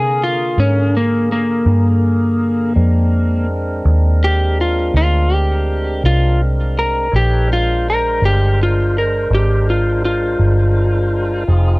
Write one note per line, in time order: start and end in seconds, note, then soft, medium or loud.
0.00 0.55 C3 medium
0.00 2.73 D3 medium
0.00 2.73 A#3 medium
0.00 0.22 G#4 medium
0.00 2.73 G#4 medium
0.00 2.73 A#4 medium
0.23 0.58 F4 medium
0.58 1.64 G#2 medium
0.58 0.95 C#4 medium
0.97 1.31 A#3 medium
1.32 3.46 A#3 medium
1.66 2.73 G2 medium
2.75 3.82 F2 medium
2.75 7.08 G#3 medium
2.75 7.08 C4 medium
2.75 7.08 D4 medium
2.75 7.09 A#4 medium
3.85 4.91 D#2 medium
4.24 4.59 G4 medium
4.61 4.95 F4 medium
4.94 6.00 D2 medium
4.94 5.33 F4 medium
5.33 6.03 G4 medium
6.04 7.09 C2 medium
6.04 6.40 F4 medium
6.79 7.13 A#4 medium
7.11 8.19 A#1 medium
7.11 7.48 D#4 medium
7.11 7.48 A4 medium
7.11 7.49 B4 medium
7.11 7.49 C#5 medium
7.16 7.50 G4 medium
7.47 11.44 G#3 medium
7.47 11.44 D4 medium
7.47 11.44 A#4 medium
7.47 11.44 C5 medium
7.53 7.86 F4 medium
7.90 8.23 A#4 medium
8.22 9.28 G1 medium
8.22 8.59 G4 medium
8.63 8.96 F4 medium
8.98 9.32 A#4 medium
9.30 10.36 G#1 medium
9.35 9.68 G4 medium
9.70 10.04 F4 medium
10.05 11.79 F4 medium
10.39 11.45 G1 medium
11.47 11.79 F1 medium
11.47 11.79 C4 medium
11.47 11.79 D#4 medium
11.47 11.79 F4 medium
11.47 11.79 G#4 medium